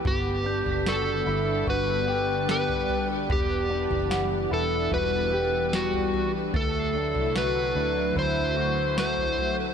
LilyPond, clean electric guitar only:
\new Staff \with { instrumentName = "Clean electric guitar" } { \time 4/4 \key g \major \tempo 4 = 74 b8 d'8 fis'8 e'8 fis'8 g'8 g'4 | b8 d'8 fis''8 e'8 fis'8 g'8 g4 | a8 d'8 fis'8 d'8 e'8 fis'8 fis'4 | }